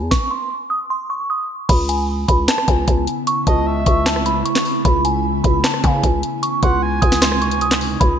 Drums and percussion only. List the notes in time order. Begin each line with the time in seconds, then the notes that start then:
0.11 kick, snare
1.69 kick, closed hi-hat, crash
1.89 closed hi-hat
2.28 kick, closed hi-hat
2.48 cross-stick, snare, clap, closed hi-hat
2.58 cross-stick
2.68 kick, closed hi-hat
2.88 kick, closed hi-hat
3.07 closed hi-hat
3.27 closed hi-hat
3.47 kick, closed hi-hat
3.86 kick, closed hi-hat
4.06 cross-stick, snare, clap, closed hi-hat
4.16 cross-stick
4.26 closed hi-hat
4.46 closed hi-hat
4.55 snare, clap
4.65 open hi-hat
4.85 kick, closed hi-hat
5.05 closed hi-hat
5.44 kick, closed hi-hat
5.64 cross-stick, snare, clap, closed hi-hat
5.74 cross-stick
5.84 kick, closed hi-hat
6.03 kick, closed hi-hat
6.23 closed hi-hat
6.43 closed hi-hat
6.63 kick, closed hi-hat
7.02 kick, closed hi-hat
7.12 snare
7.22 cross-stick, snare, clap, closed hi-hat
7.32 cross-stick
7.42 closed hi-hat
7.51 closed hi-hat
7.61 closed hi-hat
7.71 snare, clap
7.81 open hi-hat
8.01 kick, closed hi-hat